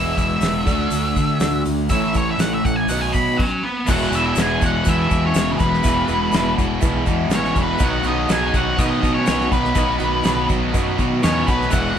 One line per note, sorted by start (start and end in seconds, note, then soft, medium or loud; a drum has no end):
0.00 0.38 E1 medium
0.00 0.64 E2 medium
0.00 0.64 B2 loud
0.00 0.65 E3 medium
0.00 0.66 G#3 medium
0.00 0.66 B3 loud
0.00 0.66 E4 loud
0.00 0.32 G#4 loud
0.00 0.32 B4 medium
0.00 0.17 E5 loud
0.00 0.33 E5 loud
0.18 1.62 E5 loud
0.18 kick medium
0.18 open hi-hat medium
0.18 shaker medium
0.41 0.64 E1 medium
0.41 0.61 G#4 medium
0.41 0.62 B4 medium
0.41 0.62 E5 medium
0.41 snare loud
0.41 open hi-hat medium
0.41 shaker loud
0.66 0.89 D2 medium
0.66 1.89 D3 medium
0.66 1.89 A3 loud
0.66 1.90 D4 loud
0.66 1.26 F#4 medium
0.66 1.90 F#4 loud
0.66 1.26 A4 medium
0.66 1.26 D5 medium
0.66 kick loud
0.66 snare soft
0.66 open hi-hat medium
0.66 shaker medium
0.91 1.14 D2 medium
0.91 open hi-hat medium
0.91 shaker loud
1.16 1.39 D3 medium
1.16 kick medium
1.16 open hi-hat medium
1.16 shaker medium
1.40 1.63 D2 medium
1.40 1.80 F#4 medium
1.40 1.80 A4 medium
1.40 1.80 D5 loud
1.40 snare loud
1.40 open hi-hat medium
1.40 shaker loud
1.65 1.89 D2 medium
1.65 open hi-hat medium
1.65 shaker medium
1.89 2.36 A1 medium
1.89 2.88 A2 loud
1.89 2.88 E3 medium
1.89 2.88 A3 loud
1.89 2.89 C#4 medium
1.89 2.29 E4 loud
1.89 2.89 E4 loud
1.89 2.30 A4 medium
1.89 2.30 C#5 loud
1.89 2.14 E5 loud
1.89 kick loud
1.89 open hi-hat medium
1.89 shaker loud
2.14 2.30 C#5 loud
2.14 kick medium
2.14 open hi-hat medium
2.14 shaker medium
2.30 2.41 E5 loud
2.39 2.62 A1 loud
2.39 2.59 E4 medium
2.39 2.60 A4 medium
2.39 2.60 C#5 medium
2.39 2.52 F#5 loud
2.39 snare loud
2.39 open hi-hat medium
2.39 shaker loud
2.54 2.65 E5 medium
2.64 2.87 A1 medium
2.64 2.84 E4 medium
2.64 2.84 A4 medium
2.64 2.85 C#5 medium
2.64 2.76 F#5 medium
2.64 kick medium
2.64 open hi-hat medium
2.64 shaker medium
2.76 2.89 G#5 medium
2.88 3.11 B1 medium
2.88 3.37 B2 medium
2.88 3.37 D#3 medium
2.88 3.37 F#3 loud
2.88 3.38 B3 loud
2.88 3.38 D#4 loud
2.88 3.29 F#4 medium
2.88 3.29 B4 medium
2.88 3.01 F#5 loud
2.88 open hi-hat medium
2.88 shaker loud
2.92 3.30 D#5 medium
3.01 3.13 G#5 loud
3.13 3.37 B2 medium
3.13 3.37 B5 loud
3.13 kick medium
3.13 open hi-hat medium
3.13 shaker medium
3.37 3.63 C#5 medium
3.37 3.86 F#5 loud
3.37 kick loud
3.37 crash medium
3.42 3.63 C#4 medium
3.63 3.88 B3 medium
3.63 3.88 B4 medium
3.87 4.09 E1 loud
3.87 4.11 E2 loud
3.87 4.11 B2 loud
3.87 4.11 E3 loud
3.87 4.12 G#3 loud
3.87 4.12 B3 loud
3.87 4.07 E4 loud
3.87 4.13 E4 loud
3.87 4.08 G#4 medium
3.87 4.08 B4 medium
3.87 4.08 E5 loud
3.87 4.14 F#5 loud
3.87 kick loud
3.87 crash loud
3.87 crash medium
3.87 shaker loud
3.92 4.13 F#4 medium
4.11 4.33 E1 medium
4.11 4.36 E2 medium
4.11 4.36 B2 medium
4.11 4.36 E3 medium
4.11 4.36 G#3 medium
4.11 4.36 B3 medium
4.11 4.32 E4 medium
4.11 4.37 E4 loud
4.11 4.32 G#4 medium
4.11 4.32 B4 medium
4.11 4.32 E5 medium
4.11 shaker medium
4.15 4.37 E4 medium
4.15 4.37 E5 loud
4.36 4.58 E1 medium
4.36 4.60 E2 medium
4.36 4.60 B2 medium
4.36 4.61 E3 medium
4.36 4.62 G#3 medium
4.36 4.62 B3 medium
4.36 4.76 E4 medium
4.36 4.62 E4 loud
4.36 4.77 G#4 medium
4.36 4.77 B4 medium
4.36 4.77 E5 medium
4.36 snare loud
4.36 crash medium
4.36 shaker loud
4.41 4.62 G#4 medium
4.41 4.65 G#5 loud
4.60 4.82 E1 medium
4.60 4.83 E2 medium
4.60 4.84 B2 loud
4.60 4.85 E3 loud
4.60 4.86 G#3 loud
4.60 4.87 B3 loud
4.60 4.87 E4 loud
4.60 4.86 F#4 medium
4.60 kick medium
4.60 shaker medium
4.66 4.89 F#5 medium
4.85 5.07 E2 medium
4.85 5.08 B2 loud
4.85 5.10 E3 medium
4.85 5.10 G#3 medium
4.85 5.11 B3 loud
4.85 5.25 E4 medium
4.85 5.11 E4 loud
4.85 5.25 G#4 medium
4.85 5.25 B4 medium
4.85 5.26 E5 medium
4.85 kick loud
4.85 crash medium
4.85 shaker loud
4.89 5.23 E4 medium
4.89 5.25 E5 medium
5.09 5.34 E2 medium
5.09 5.31 E2 loud
5.09 5.34 B2 loud
5.09 5.34 E3 medium
5.09 5.35 G#3 medium
5.09 5.36 B3 medium
5.09 5.36 E4 loud
5.09 kick medium
5.09 shaker medium
5.26 5.53 C#4 medium
5.26 5.55 C#5 medium
5.34 5.55 E1 medium
5.34 5.58 E2 medium
5.34 5.59 B2 medium
5.34 5.60 E3 medium
5.34 5.60 G#3 medium
5.34 5.61 B3 medium
5.34 5.74 E4 medium
5.34 5.61 E4 medium
5.34 5.75 G#4 medium
5.34 5.75 B4 medium
5.34 5.76 E5 medium
5.34 snare loud
5.34 crash medium
5.34 shaker loud
5.51 5.59 G#3 medium
5.51 5.59 G#4 medium
5.59 5.81 E1 medium
5.59 5.83 E2 medium
5.59 5.84 B2 medium
5.59 5.84 E3 medium
5.59 5.85 G#3 loud
5.59 5.85 B3 loud
5.59 5.85 E4 loud
5.59 6.54 B4 medium
5.59 kick medium
5.59 shaker medium
5.64 6.56 B3 medium
5.74 snare soft
5.83 6.05 E1 loud
5.83 6.07 E2 loud
5.83 6.08 B2 loud
5.83 6.08 E3 medium
5.83 6.08 G#3 loud
5.83 6.09 B3 loud
5.83 6.03 E4 loud
5.83 6.08 E4 loud
5.83 6.03 G#4 medium
5.83 6.04 B4 loud
5.83 6.04 E5 loud
5.83 kick loud
5.83 crash medium
5.83 shaker loud
6.07 6.29 E1 medium
6.07 6.32 E2 medium
6.07 6.33 B2 medium
6.07 6.33 E3 medium
6.07 6.33 G#3 medium
6.07 6.35 B3 loud
6.07 6.27 E4 medium
6.07 6.34 E4 medium
6.07 6.28 G#4 medium
6.07 6.28 B4 medium
6.07 6.28 E5 medium
6.07 shaker medium
6.32 6.54 E1 loud
6.32 6.56 E2 medium
6.32 6.57 B2 medium
6.32 6.57 E3 medium
6.32 6.57 G#3 medium
6.32 6.58 B3 medium
6.32 6.72 E4 medium
6.32 6.57 E4 medium
6.32 6.72 G#4 medium
6.32 6.73 B4 medium
6.32 6.73 E5 loud
6.32 snare loud
6.32 crash medium
6.32 shaker medium
6.57 6.79 E1 medium
6.57 6.81 E2 loud
6.57 6.82 B2 medium
6.57 6.80 E3 loud
6.57 6.81 G#3 loud
6.57 6.82 B3 loud
6.57 6.82 E4 loud
6.57 kick medium
6.57 shaker medium
6.81 7.03 B1 loud
6.81 7.05 E2 medium
6.81 7.05 B2 medium
6.81 7.06 E3 medium
6.81 7.06 G#3 medium
6.81 7.07 B3 loud
6.81 7.21 E4 medium
6.81 7.07 E4 loud
6.81 7.21 G#4 medium
6.81 7.22 B4 medium
6.81 7.22 E5 medium
6.81 kick loud
6.81 crash medium
6.81 shaker medium
7.06 7.31 E2 loud
7.06 7.28 E2 medium
7.06 7.31 B2 loud
7.06 7.31 E3 loud
7.06 7.31 G#3 medium
7.06 7.32 B3 loud
7.06 7.32 E4 loud
7.06 kick loud
7.06 shaker medium
7.30 7.51 A1 loud
7.30 7.55 E2 medium
7.30 7.55 B2 medium
7.30 7.56 E3 medium
7.30 7.56 G#3 medium
7.30 7.57 B3 medium
7.30 7.70 E4 medium
7.30 7.57 E4 medium
7.30 7.70 G#4 medium
7.30 7.71 B4 medium
7.30 7.71 E5 medium
7.30 snare loud
7.30 crash medium
7.30 shaker loud
7.35 7.58 C#4 medium
7.35 7.56 C#5 medium
7.44 snare soft
7.55 7.77 E1 medium
7.55 7.79 E2 medium
7.55 7.79 B2 medium
7.55 7.80 E3 medium
7.55 7.80 G#3 medium
7.55 7.81 B3 medium
7.55 7.80 E4 loud
7.55 kick medium
7.55 shaker medium
7.60 7.81 B3 medium
7.60 7.82 B4 medium
7.79 8.01 B1 loud
7.79 8.04 B2 loud
7.79 8.04 D#3 loud
7.79 8.06 F#3 loud
7.79 8.06 B3 loud
7.79 8.00 D#4 loud
7.79 8.06 D#4 loud
7.79 8.00 F#4 loud
7.79 8.00 B4 loud
7.79 8.00 D#5 loud
7.79 kick loud
7.79 crash medium
7.79 shaker medium
7.84 8.06 F#4 medium
7.84 8.05 F#5 loud
8.03 8.25 B1 medium
8.03 8.30 B2 medium
8.03 8.30 D#3 medium
8.03 8.30 F#3 loud
8.03 8.31 B3 medium
8.03 8.24 D#4 medium
8.03 8.32 D#4 medium
8.03 8.24 F#4 medium
8.03 8.25 B4 medium
8.03 8.25 D#5 medium
8.03 shaker medium
8.07 8.29 D#4 medium
8.07 8.31 D#5 medium
8.27 8.51 B1 loud
8.27 8.53 B2 medium
8.27 8.52 D#3 medium
8.27 8.54 F#3 medium
8.27 8.67 D#4 medium
8.27 8.68 F#4 medium
8.27 8.68 B4 medium
8.27 8.68 D#5 medium
8.27 snare loud
8.27 crash medium
8.27 shaker medium
8.31 8.54 B3 loud
8.31 8.55 D#4 loud
8.31 8.54 G#4 medium
8.31 8.53 G#5 loud
8.54 8.75 B1 medium
8.54 8.76 B2 loud
8.54 8.77 D#3 loud
8.54 8.77 F#3 loud
8.54 8.78 B3 loud
8.54 8.78 D#4 loud
8.54 8.80 F#5 loud
8.54 kick medium
8.54 shaker medium
8.58 8.79 F#4 medium
8.77 9.01 B2 medium
8.77 8.99 B2 medium
8.77 9.02 D#3 medium
8.77 9.02 F#3 medium
8.77 9.03 B3 medium
8.77 9.17 D#4 medium
8.77 9.03 D#4 medium
8.77 9.14 D#4 medium
8.77 9.17 F#4 medium
8.77 9.18 B4 medium
8.77 9.14 D#5 loud
8.77 9.18 D#5 medium
8.77 kick loud
8.77 crash medium
8.77 shaker medium
9.03 9.25 B2 medium
9.03 9.24 B2 loud
9.03 9.26 D#3 medium
9.03 9.26 F#3 loud
9.03 9.27 B3 loud
9.03 9.27 D#4 loud
9.03 kick loud
9.03 shaker medium
9.14 9.51 C#4 medium
9.14 9.49 C#5 medium
9.26 9.48 B1 loud
9.26 9.49 B2 medium
9.26 9.49 D#3 medium
9.26 9.50 F#3 loud
9.26 9.52 B3 medium
9.26 9.66 D#4 medium
9.26 9.51 D#4 medium
9.26 9.66 F#4 medium
9.26 9.67 B4 medium
9.26 9.67 D#5 medium
9.26 snare loud
9.26 crash medium
9.26 shaker medium
9.41 snare soft
9.51 9.73 B1 medium
9.51 9.73 B2 medium
9.51 9.74 D#3 loud
9.51 9.74 F#3 loud
9.51 9.75 B3 medium
9.51 10.46 B3 medium
9.51 9.75 D#4 loud
9.51 10.46 B4 medium
9.51 kick medium
9.51 shaker medium
9.64 snare soft
9.74 9.97 B1 loud
9.74 9.98 B2 loud
9.74 9.99 D#3 loud
9.74 9.99 F#3 loud
9.74 10.00 B3 loud
9.74 9.95 D#4 loud
9.74 10.00 D#4 loud
9.74 9.96 F#4 loud
9.74 9.96 B4 medium
9.74 9.97 D#5 loud
9.74 kick loud
9.74 crash medium
9.74 shaker medium
9.99 10.21 B1 medium
9.99 10.22 B2 medium
9.99 10.23 D#3 medium
9.99 10.23 F#3 medium
9.99 10.24 B3 medium
9.99 10.20 D#4 medium
9.99 10.24 D#4 medium
9.99 10.20 F#4 medium
9.99 10.21 B4 medium
9.99 10.21 D#5 medium
9.99 shaker medium
10.23 10.46 B1 medium
10.23 10.47 B2 medium
10.23 10.47 D#3 medium
10.23 10.48 F#3 medium
10.23 10.49 B3 medium
10.23 10.63 D#4 medium
10.23 10.49 D#4 medium
10.23 10.64 F#4 medium
10.23 10.64 B4 medium
10.23 10.64 D#5 loud
10.23 snare loud
10.23 crash medium
10.23 shaker medium
10.49 10.71 B1 medium
10.49 10.71 B2 loud
10.49 10.72 D#3 loud
10.49 10.72 F#3 loud
10.49 10.73 B3 loud
10.49 10.73 D#4 loud
10.49 kick loud
10.49 shaker medium
10.72 10.95 F#2 medium
10.72 10.97 B2 medium
10.72 10.97 D#3 medium
10.72 10.98 F#3 medium
10.72 10.98 B3 loud
10.72 11.13 D#4 medium
10.72 10.98 D#4 medium
10.72 11.13 F#4 medium
10.72 11.14 B4 medium
10.72 11.14 D#5 loud
10.72 kick loud
10.72 crash medium
10.72 shaker medium
10.98 11.21 B2 medium
10.98 11.20 B2 medium
10.98 11.21 D#3 loud
10.98 11.22 F#3 medium
10.98 11.23 B3 loud
10.98 11.23 D#4 loud
10.98 kick medium
10.98 shaker medium
11.22 11.45 E2 medium
11.22 11.46 B2 medium
11.22 11.46 D#3 medium
11.22 11.47 F#3 medium
11.22 11.48 B3 medium
11.22 11.47 C#4 medium
11.22 11.62 D#4 medium
11.22 11.47 D#4 medium
11.22 11.63 F#4 medium
11.22 11.63 B4 medium
11.22 11.49 C#5 medium
11.22 11.63 D#5 medium
11.22 snare loud
11.22 crash medium
11.22 shaker loud
11.47 11.69 B1 medium
11.47 11.71 B2 medium
11.47 11.71 D#3 medium
11.47 11.71 F#3 medium
11.47 11.73 B3 loud
11.47 11.71 D#4 loud
11.47 11.73 B4 medium
11.47 kick medium
11.47 shaker medium
11.51 11.73 B3 medium
11.61 snare soft
11.71 11.93 E1 loud
11.71 11.95 E2 loud
11.71 11.95 B2 loud
11.71 11.97 E3 loud
11.71 11.98 G#3 loud
11.71 11.98 B3 loud
11.71 11.92 E4 loud
11.71 11.98 E4 loud
11.71 11.92 G#4 medium
11.71 11.92 B4 medium
11.71 11.92 E5 loud
11.71 11.98 F#5 loud
11.71 kick loud
11.71 crash medium
11.71 shaker loud
11.77 11.98 F#4 medium
11.96 11.99 E2 medium
11.96 11.99 E4 medium